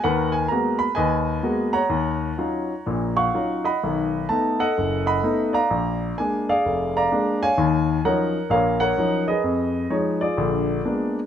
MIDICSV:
0, 0, Header, 1, 2, 480
1, 0, Start_track
1, 0, Key_signature, -6, "minor"
1, 0, Tempo, 470588
1, 39, Time_signature, 4, 2, 24, 8
1, 11489, End_track
2, 0, Start_track
2, 0, Title_t, "Grand piano"
2, 0, Program_c, 0, 0
2, 0, Note_on_c, 0, 75, 61
2, 37, Note_on_c, 0, 78, 84
2, 40, Note_on_c, 0, 71, 63
2, 41, Note_on_c, 0, 70, 58
2, 46, Note_on_c, 0, 39, 69
2, 47, Note_on_c, 0, 51, 67
2, 323, Note_off_c, 0, 75, 0
2, 328, Note_on_c, 0, 80, 84
2, 329, Note_off_c, 0, 78, 0
2, 455, Note_off_c, 0, 39, 0
2, 455, Note_off_c, 0, 51, 0
2, 494, Note_on_c, 0, 82, 78
2, 508, Note_off_c, 0, 80, 0
2, 523, Note_on_c, 0, 56, 47
2, 527, Note_on_c, 0, 58, 48
2, 531, Note_on_c, 0, 66, 56
2, 535, Note_on_c, 0, 59, 47
2, 803, Note_on_c, 0, 83, 85
2, 827, Note_off_c, 0, 82, 0
2, 848, Note_off_c, 0, 56, 0
2, 850, Note_off_c, 0, 58, 0
2, 852, Note_off_c, 0, 66, 0
2, 854, Note_off_c, 0, 59, 0
2, 951, Note_off_c, 0, 70, 0
2, 951, Note_off_c, 0, 71, 0
2, 968, Note_on_c, 0, 80, 84
2, 980, Note_on_c, 0, 75, 64
2, 982, Note_on_c, 0, 71, 63
2, 983, Note_off_c, 0, 83, 0
2, 994, Note_on_c, 0, 39, 70
2, 1405, Note_off_c, 0, 39, 0
2, 1458, Note_on_c, 0, 58, 47
2, 1461, Note_on_c, 0, 56, 54
2, 1463, Note_on_c, 0, 59, 45
2, 1467, Note_on_c, 0, 66, 56
2, 1764, Note_on_c, 0, 82, 87
2, 1768, Note_on_c, 0, 78, 61
2, 1774, Note_on_c, 0, 73, 65
2, 1793, Note_off_c, 0, 58, 0
2, 1794, Note_off_c, 0, 80, 0
2, 1795, Note_off_c, 0, 56, 0
2, 1796, Note_off_c, 0, 59, 0
2, 1798, Note_off_c, 0, 66, 0
2, 1900, Note_off_c, 0, 75, 0
2, 1901, Note_off_c, 0, 71, 0
2, 1934, Note_on_c, 0, 39, 65
2, 2357, Note_off_c, 0, 39, 0
2, 2428, Note_on_c, 0, 54, 46
2, 2431, Note_on_c, 0, 61, 41
2, 2433, Note_on_c, 0, 65, 52
2, 2438, Note_on_c, 0, 63, 46
2, 2764, Note_off_c, 0, 54, 0
2, 2765, Note_off_c, 0, 61, 0
2, 2766, Note_off_c, 0, 65, 0
2, 2769, Note_off_c, 0, 63, 0
2, 2921, Note_on_c, 0, 46, 60
2, 2923, Note_on_c, 0, 34, 59
2, 3186, Note_off_c, 0, 82, 0
2, 3188, Note_off_c, 0, 78, 0
2, 3191, Note_off_c, 0, 73, 0
2, 3226, Note_on_c, 0, 77, 61
2, 3230, Note_on_c, 0, 78, 63
2, 3230, Note_on_c, 0, 85, 80
2, 3342, Note_off_c, 0, 46, 0
2, 3343, Note_off_c, 0, 34, 0
2, 3409, Note_on_c, 0, 54, 44
2, 3412, Note_on_c, 0, 61, 41
2, 3414, Note_on_c, 0, 65, 53
2, 3416, Note_on_c, 0, 63, 44
2, 3689, Note_off_c, 0, 85, 0
2, 3709, Note_off_c, 0, 78, 0
2, 3717, Note_on_c, 0, 75, 59
2, 3724, Note_on_c, 0, 78, 60
2, 3727, Note_on_c, 0, 83, 79
2, 3745, Note_off_c, 0, 54, 0
2, 3747, Note_off_c, 0, 61, 0
2, 3748, Note_off_c, 0, 65, 0
2, 3749, Note_off_c, 0, 63, 0
2, 3848, Note_off_c, 0, 77, 0
2, 3910, Note_on_c, 0, 35, 62
2, 3910, Note_on_c, 0, 51, 60
2, 4322, Note_off_c, 0, 35, 0
2, 4322, Note_off_c, 0, 51, 0
2, 4375, Note_on_c, 0, 81, 77
2, 4379, Note_on_c, 0, 57, 48
2, 4389, Note_on_c, 0, 59, 43
2, 4393, Note_on_c, 0, 63, 50
2, 4398, Note_off_c, 0, 83, 0
2, 4650, Note_off_c, 0, 75, 0
2, 4653, Note_off_c, 0, 78, 0
2, 4671, Note_off_c, 0, 81, 0
2, 4687, Note_on_c, 0, 69, 61
2, 4692, Note_on_c, 0, 75, 62
2, 4694, Note_on_c, 0, 78, 86
2, 4712, Note_off_c, 0, 57, 0
2, 4717, Note_off_c, 0, 59, 0
2, 4719, Note_off_c, 0, 63, 0
2, 4876, Note_on_c, 0, 30, 60
2, 5149, Note_off_c, 0, 75, 0
2, 5153, Note_off_c, 0, 78, 0
2, 5164, Note_on_c, 0, 75, 60
2, 5168, Note_on_c, 0, 78, 62
2, 5172, Note_on_c, 0, 83, 86
2, 5283, Note_off_c, 0, 30, 0
2, 5335, Note_on_c, 0, 57, 52
2, 5342, Note_on_c, 0, 59, 44
2, 5344, Note_on_c, 0, 63, 55
2, 5609, Note_off_c, 0, 69, 0
2, 5641, Note_on_c, 0, 74, 58
2, 5652, Note_on_c, 0, 77, 66
2, 5655, Note_on_c, 0, 82, 87
2, 5667, Note_off_c, 0, 83, 0
2, 5669, Note_off_c, 0, 57, 0
2, 5672, Note_off_c, 0, 59, 0
2, 5673, Note_off_c, 0, 63, 0
2, 5773, Note_off_c, 0, 75, 0
2, 5775, Note_off_c, 0, 78, 0
2, 5819, Note_on_c, 0, 34, 65
2, 6233, Note_off_c, 0, 34, 0
2, 6257, Note_off_c, 0, 82, 0
2, 6303, Note_on_c, 0, 80, 78
2, 6311, Note_on_c, 0, 56, 45
2, 6315, Note_on_c, 0, 58, 45
2, 6318, Note_on_c, 0, 62, 49
2, 6563, Note_off_c, 0, 74, 0
2, 6568, Note_off_c, 0, 77, 0
2, 6622, Note_on_c, 0, 74, 61
2, 6623, Note_off_c, 0, 80, 0
2, 6623, Note_on_c, 0, 68, 60
2, 6625, Note_on_c, 0, 77, 84
2, 6634, Note_off_c, 0, 56, 0
2, 6636, Note_off_c, 0, 58, 0
2, 6638, Note_off_c, 0, 62, 0
2, 6787, Note_on_c, 0, 29, 64
2, 7062, Note_off_c, 0, 77, 0
2, 7091, Note_off_c, 0, 74, 0
2, 7106, Note_on_c, 0, 74, 64
2, 7106, Note_on_c, 0, 82, 86
2, 7111, Note_on_c, 0, 77, 65
2, 7194, Note_off_c, 0, 29, 0
2, 7263, Note_on_c, 0, 62, 56
2, 7264, Note_on_c, 0, 56, 52
2, 7271, Note_on_c, 0, 58, 45
2, 7529, Note_off_c, 0, 68, 0
2, 7561, Note_off_c, 0, 77, 0
2, 7574, Note_on_c, 0, 80, 102
2, 7577, Note_on_c, 0, 73, 60
2, 7577, Note_on_c, 0, 77, 62
2, 7585, Note_off_c, 0, 62, 0
2, 7586, Note_off_c, 0, 56, 0
2, 7587, Note_off_c, 0, 82, 0
2, 7590, Note_off_c, 0, 58, 0
2, 7694, Note_off_c, 0, 74, 0
2, 7727, Note_on_c, 0, 39, 67
2, 7731, Note_on_c, 0, 51, 67
2, 8138, Note_off_c, 0, 39, 0
2, 8140, Note_off_c, 0, 51, 0
2, 8165, Note_off_c, 0, 80, 0
2, 8197, Note_off_c, 0, 73, 0
2, 8207, Note_on_c, 0, 53, 49
2, 8211, Note_on_c, 0, 63, 55
2, 8211, Note_on_c, 0, 70, 56
2, 8212, Note_on_c, 0, 54, 44
2, 8212, Note_on_c, 0, 78, 77
2, 8213, Note_on_c, 0, 61, 43
2, 8213, Note_on_c, 0, 73, 56
2, 8480, Note_off_c, 0, 77, 0
2, 8533, Note_off_c, 0, 53, 0
2, 8535, Note_off_c, 0, 63, 0
2, 8536, Note_off_c, 0, 54, 0
2, 8536, Note_off_c, 0, 61, 0
2, 8649, Note_off_c, 0, 78, 0
2, 8667, Note_off_c, 0, 73, 0
2, 8668, Note_on_c, 0, 46, 60
2, 8674, Note_on_c, 0, 34, 61
2, 8675, Note_off_c, 0, 70, 0
2, 8678, Note_on_c, 0, 77, 80
2, 8683, Note_on_c, 0, 73, 57
2, 8690, Note_on_c, 0, 70, 56
2, 8967, Note_off_c, 0, 77, 0
2, 8973, Note_off_c, 0, 73, 0
2, 8974, Note_off_c, 0, 70, 0
2, 8977, Note_on_c, 0, 78, 92
2, 8989, Note_on_c, 0, 70, 58
2, 8989, Note_on_c, 0, 73, 58
2, 9082, Note_off_c, 0, 46, 0
2, 9085, Note_off_c, 0, 34, 0
2, 9154, Note_on_c, 0, 53, 49
2, 9156, Note_on_c, 0, 61, 45
2, 9158, Note_on_c, 0, 54, 43
2, 9167, Note_on_c, 0, 63, 54
2, 9421, Note_off_c, 0, 78, 0
2, 9464, Note_on_c, 0, 75, 74
2, 9477, Note_on_c, 0, 68, 57
2, 9477, Note_on_c, 0, 71, 54
2, 9479, Note_off_c, 0, 53, 0
2, 9479, Note_off_c, 0, 61, 0
2, 9481, Note_off_c, 0, 54, 0
2, 9485, Note_off_c, 0, 63, 0
2, 9582, Note_off_c, 0, 70, 0
2, 9582, Note_off_c, 0, 73, 0
2, 9626, Note_on_c, 0, 41, 64
2, 10039, Note_off_c, 0, 41, 0
2, 10097, Note_on_c, 0, 53, 46
2, 10098, Note_on_c, 0, 56, 42
2, 10100, Note_on_c, 0, 63, 51
2, 10103, Note_on_c, 0, 73, 65
2, 10122, Note_off_c, 0, 75, 0
2, 10385, Note_off_c, 0, 68, 0
2, 10385, Note_off_c, 0, 71, 0
2, 10396, Note_off_c, 0, 73, 0
2, 10415, Note_on_c, 0, 74, 68
2, 10423, Note_on_c, 0, 68, 46
2, 10424, Note_on_c, 0, 65, 50
2, 10432, Note_off_c, 0, 53, 0
2, 10432, Note_off_c, 0, 56, 0
2, 10433, Note_off_c, 0, 63, 0
2, 10582, Note_on_c, 0, 34, 61
2, 10589, Note_on_c, 0, 50, 61
2, 11002, Note_off_c, 0, 34, 0
2, 11006, Note_off_c, 0, 50, 0
2, 11069, Note_on_c, 0, 56, 48
2, 11070, Note_on_c, 0, 59, 44
2, 11071, Note_on_c, 0, 62, 54
2, 11074, Note_on_c, 0, 58, 44
2, 11347, Note_off_c, 0, 74, 0
2, 11351, Note_off_c, 0, 68, 0
2, 11352, Note_off_c, 0, 65, 0
2, 11407, Note_off_c, 0, 56, 0
2, 11407, Note_off_c, 0, 59, 0
2, 11408, Note_off_c, 0, 62, 0
2, 11410, Note_off_c, 0, 58, 0
2, 11489, End_track
0, 0, End_of_file